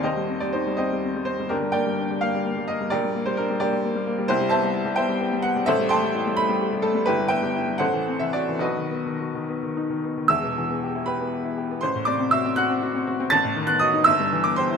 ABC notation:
X:1
M:6/8
L:1/16
Q:3/8=82
K:Gphr
V:1 name="Upright piano"
[Gce]3 d c2 [Gce]4 c2 | [DGB]2 [Bdg]4 f4 e2 | [GBd]3 c B2 [GBd]4 z2 | [K:Em] [EGc]2 [cea]4 [ceg]4 f2 |
[Ace]2 [gac']4 b4 A2 | [EGB]2 [Beg]4 [Acf]3 e d2 | [FB^d]8- [FBd]2 z2 | [ee']6 [Bb]6 |
[cc']2 [dd']2 [ee']2 [ff']6 | [aa']3 f' [^d^d']2 [ee']3 =d' [cc']2 |]
V:2 name="Upright piano" clef=bass
[E,,,E,,] G, C G, E G, C G, C G, C G, | G,,, G, B, G, D G, B, G, B, G, B, G, | B,,, G, B, G, D G, B, G, B, G, B, G, | [K:Em] C,, G, B, G, E G, B, G, B, G, B, G, |
A,,, G, A, G, E G, A, G, G G, A, G, | G,,, G, B, G, E G, A,,, E, C E, F E, | B,,, ^D, B, D, F D, B, D, ^D D, B, D, | [E,,,E,,] B,, E, B, G E G B, G E G B, |
A,,, A,, C, C F C F C F C F C | A,,, A,, ^D, B, F ^D G,,, G,, E, B, G E |]